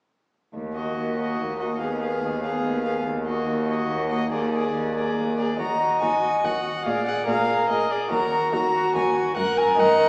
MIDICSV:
0, 0, Header, 1, 5, 480
1, 0, Start_track
1, 0, Key_signature, -6, "minor"
1, 0, Tempo, 419287
1, 614, Time_signature, 3, 2, 24, 8
1, 4444, Tempo, 426439
1, 7324, Tempo, 417246
1, 11520, End_track
2, 0, Start_track
2, 0, Title_t, "Violin"
2, 0, Program_c, 0, 40
2, 872, Note_on_c, 0, 75, 26
2, 1343, Note_off_c, 0, 75, 0
2, 1358, Note_on_c, 0, 75, 29
2, 1816, Note_off_c, 0, 75, 0
2, 1823, Note_on_c, 0, 75, 30
2, 2039, Note_off_c, 0, 75, 0
2, 2046, Note_on_c, 0, 77, 27
2, 2286, Note_off_c, 0, 77, 0
2, 2307, Note_on_c, 0, 77, 26
2, 2764, Note_off_c, 0, 77, 0
2, 2771, Note_on_c, 0, 77, 33
2, 3238, Note_off_c, 0, 77, 0
2, 3251, Note_on_c, 0, 77, 31
2, 3483, Note_off_c, 0, 77, 0
2, 3734, Note_on_c, 0, 75, 28
2, 4199, Note_off_c, 0, 75, 0
2, 4214, Note_on_c, 0, 75, 37
2, 4677, Note_off_c, 0, 75, 0
2, 4684, Note_on_c, 0, 75, 39
2, 4917, Note_off_c, 0, 75, 0
2, 4943, Note_on_c, 0, 74, 36
2, 5168, Note_off_c, 0, 74, 0
2, 5177, Note_on_c, 0, 74, 30
2, 5639, Note_off_c, 0, 74, 0
2, 5649, Note_on_c, 0, 74, 34
2, 6111, Note_off_c, 0, 74, 0
2, 6118, Note_on_c, 0, 74, 34
2, 6358, Note_off_c, 0, 74, 0
2, 6370, Note_on_c, 0, 82, 51
2, 6815, Note_off_c, 0, 82, 0
2, 6843, Note_on_c, 0, 80, 47
2, 7329, Note_on_c, 0, 78, 45
2, 7347, Note_off_c, 0, 80, 0
2, 7802, Note_on_c, 0, 77, 52
2, 7819, Note_off_c, 0, 78, 0
2, 8030, Note_off_c, 0, 77, 0
2, 8037, Note_on_c, 0, 78, 40
2, 8276, Note_off_c, 0, 78, 0
2, 8288, Note_on_c, 0, 77, 53
2, 8756, Note_off_c, 0, 77, 0
2, 8766, Note_on_c, 0, 75, 49
2, 9016, Note_on_c, 0, 74, 49
2, 9033, Note_off_c, 0, 75, 0
2, 9240, Note_off_c, 0, 74, 0
2, 9247, Note_on_c, 0, 82, 61
2, 9718, Note_off_c, 0, 82, 0
2, 9726, Note_on_c, 0, 82, 59
2, 10198, Note_off_c, 0, 82, 0
2, 10216, Note_on_c, 0, 80, 55
2, 10679, Note_off_c, 0, 80, 0
2, 10697, Note_on_c, 0, 78, 67
2, 10927, Note_on_c, 0, 80, 56
2, 10944, Note_off_c, 0, 78, 0
2, 11177, Note_on_c, 0, 78, 63
2, 11194, Note_off_c, 0, 80, 0
2, 11520, Note_off_c, 0, 78, 0
2, 11520, End_track
3, 0, Start_track
3, 0, Title_t, "Violin"
3, 0, Program_c, 1, 40
3, 855, Note_on_c, 1, 66, 27
3, 1329, Note_off_c, 1, 66, 0
3, 1336, Note_on_c, 1, 66, 28
3, 1809, Note_off_c, 1, 66, 0
3, 1825, Note_on_c, 1, 66, 28
3, 2057, Note_off_c, 1, 66, 0
3, 2073, Note_on_c, 1, 68, 26
3, 2290, Note_off_c, 1, 68, 0
3, 2297, Note_on_c, 1, 68, 29
3, 2764, Note_off_c, 1, 68, 0
3, 2782, Note_on_c, 1, 68, 29
3, 3244, Note_off_c, 1, 68, 0
3, 3256, Note_on_c, 1, 68, 32
3, 3486, Note_off_c, 1, 68, 0
3, 3737, Note_on_c, 1, 66, 33
3, 4201, Note_off_c, 1, 66, 0
3, 4210, Note_on_c, 1, 66, 34
3, 4676, Note_off_c, 1, 66, 0
3, 4684, Note_on_c, 1, 66, 36
3, 4906, Note_off_c, 1, 66, 0
3, 4913, Note_on_c, 1, 68, 29
3, 5153, Note_off_c, 1, 68, 0
3, 5166, Note_on_c, 1, 68, 33
3, 5633, Note_off_c, 1, 68, 0
3, 5649, Note_on_c, 1, 68, 37
3, 6118, Note_off_c, 1, 68, 0
3, 6140, Note_on_c, 1, 68, 31
3, 6369, Note_off_c, 1, 68, 0
3, 6376, Note_on_c, 1, 66, 29
3, 6601, Note_off_c, 1, 66, 0
3, 6607, Note_on_c, 1, 66, 29
3, 6842, Note_off_c, 1, 66, 0
3, 6849, Note_on_c, 1, 66, 35
3, 7069, Note_off_c, 1, 66, 0
3, 7076, Note_on_c, 1, 66, 31
3, 7314, Note_off_c, 1, 66, 0
3, 7336, Note_on_c, 1, 66, 33
3, 7552, Note_off_c, 1, 66, 0
3, 7559, Note_on_c, 1, 66, 33
3, 7787, Note_off_c, 1, 66, 0
3, 7794, Note_on_c, 1, 68, 33
3, 8028, Note_off_c, 1, 68, 0
3, 8035, Note_on_c, 1, 68, 29
3, 8254, Note_off_c, 1, 68, 0
3, 8261, Note_on_c, 1, 68, 37
3, 8500, Note_off_c, 1, 68, 0
3, 8506, Note_on_c, 1, 68, 31
3, 8742, Note_off_c, 1, 68, 0
3, 8749, Note_on_c, 1, 68, 37
3, 8990, Note_off_c, 1, 68, 0
3, 9001, Note_on_c, 1, 68, 38
3, 9230, Note_off_c, 1, 68, 0
3, 9237, Note_on_c, 1, 66, 35
3, 9460, Note_off_c, 1, 66, 0
3, 9467, Note_on_c, 1, 66, 34
3, 9708, Note_off_c, 1, 66, 0
3, 9715, Note_on_c, 1, 66, 42
3, 9957, Note_off_c, 1, 66, 0
3, 9970, Note_on_c, 1, 66, 38
3, 10204, Note_off_c, 1, 66, 0
3, 10214, Note_on_c, 1, 66, 41
3, 10436, Note_off_c, 1, 66, 0
3, 10443, Note_on_c, 1, 66, 45
3, 10679, Note_off_c, 1, 66, 0
3, 10692, Note_on_c, 1, 70, 41
3, 10923, Note_off_c, 1, 70, 0
3, 10940, Note_on_c, 1, 70, 39
3, 11167, Note_off_c, 1, 70, 0
3, 11174, Note_on_c, 1, 70, 45
3, 11405, Note_off_c, 1, 70, 0
3, 11416, Note_on_c, 1, 70, 39
3, 11520, Note_off_c, 1, 70, 0
3, 11520, End_track
4, 0, Start_track
4, 0, Title_t, "Viola"
4, 0, Program_c, 2, 41
4, 865, Note_on_c, 2, 58, 27
4, 1339, Note_off_c, 2, 58, 0
4, 1351, Note_on_c, 2, 58, 29
4, 1817, Note_off_c, 2, 58, 0
4, 1822, Note_on_c, 2, 58, 28
4, 2055, Note_off_c, 2, 58, 0
4, 2065, Note_on_c, 2, 59, 26
4, 2296, Note_off_c, 2, 59, 0
4, 2302, Note_on_c, 2, 59, 28
4, 2766, Note_off_c, 2, 59, 0
4, 2783, Note_on_c, 2, 59, 29
4, 3244, Note_off_c, 2, 59, 0
4, 3255, Note_on_c, 2, 59, 31
4, 3485, Note_off_c, 2, 59, 0
4, 3734, Note_on_c, 2, 58, 33
4, 4199, Note_off_c, 2, 58, 0
4, 4206, Note_on_c, 2, 58, 36
4, 4674, Note_off_c, 2, 58, 0
4, 4701, Note_on_c, 2, 58, 35
4, 4926, Note_off_c, 2, 58, 0
4, 4939, Note_on_c, 2, 58, 34
4, 5166, Note_off_c, 2, 58, 0
4, 5178, Note_on_c, 2, 58, 32
4, 5639, Note_off_c, 2, 58, 0
4, 5646, Note_on_c, 2, 58, 32
4, 6116, Note_off_c, 2, 58, 0
4, 6136, Note_on_c, 2, 58, 30
4, 6356, Note_off_c, 2, 58, 0
4, 6363, Note_on_c, 2, 75, 41
4, 7805, Note_on_c, 2, 74, 41
4, 7822, Note_off_c, 2, 75, 0
4, 8284, Note_off_c, 2, 74, 0
4, 8291, Note_on_c, 2, 70, 44
4, 9227, Note_off_c, 2, 70, 0
4, 9252, Note_on_c, 2, 70, 45
4, 9729, Note_on_c, 2, 66, 48
4, 9746, Note_off_c, 2, 70, 0
4, 10680, Note_off_c, 2, 66, 0
4, 10687, Note_on_c, 2, 70, 51
4, 11152, Note_off_c, 2, 70, 0
4, 11159, Note_on_c, 2, 75, 60
4, 11520, Note_off_c, 2, 75, 0
4, 11520, End_track
5, 0, Start_track
5, 0, Title_t, "Cello"
5, 0, Program_c, 3, 42
5, 619, Note_on_c, 3, 39, 35
5, 1047, Note_off_c, 3, 39, 0
5, 1107, Note_on_c, 3, 39, 33
5, 1531, Note_off_c, 3, 39, 0
5, 1600, Note_on_c, 3, 39, 32
5, 2012, Note_off_c, 3, 39, 0
5, 2070, Note_on_c, 3, 39, 37
5, 2484, Note_off_c, 3, 39, 0
5, 2552, Note_on_c, 3, 39, 39
5, 2964, Note_off_c, 3, 39, 0
5, 3013, Note_on_c, 3, 39, 38
5, 3432, Note_off_c, 3, 39, 0
5, 3491, Note_on_c, 3, 39, 43
5, 3909, Note_off_c, 3, 39, 0
5, 3965, Note_on_c, 3, 39, 46
5, 4389, Note_off_c, 3, 39, 0
5, 4445, Note_on_c, 3, 39, 44
5, 4865, Note_off_c, 3, 39, 0
5, 4918, Note_on_c, 3, 39, 49
5, 5343, Note_off_c, 3, 39, 0
5, 5408, Note_on_c, 3, 39, 42
5, 5827, Note_off_c, 3, 39, 0
5, 5889, Note_on_c, 3, 39, 35
5, 6313, Note_off_c, 3, 39, 0
5, 6368, Note_on_c, 3, 39, 45
5, 6769, Note_off_c, 3, 39, 0
5, 6853, Note_on_c, 3, 39, 42
5, 7251, Note_off_c, 3, 39, 0
5, 7330, Note_on_c, 3, 39, 42
5, 7728, Note_off_c, 3, 39, 0
5, 7810, Note_on_c, 3, 46, 45
5, 8209, Note_off_c, 3, 46, 0
5, 8284, Note_on_c, 3, 46, 51
5, 8686, Note_off_c, 3, 46, 0
5, 8766, Note_on_c, 3, 46, 45
5, 9166, Note_off_c, 3, 46, 0
5, 9249, Note_on_c, 3, 39, 55
5, 9650, Note_off_c, 3, 39, 0
5, 9725, Note_on_c, 3, 39, 49
5, 10129, Note_off_c, 3, 39, 0
5, 10214, Note_on_c, 3, 39, 52
5, 10610, Note_off_c, 3, 39, 0
5, 10688, Note_on_c, 3, 42, 57
5, 11088, Note_off_c, 3, 42, 0
5, 11162, Note_on_c, 3, 42, 62
5, 11520, Note_off_c, 3, 42, 0
5, 11520, End_track
0, 0, End_of_file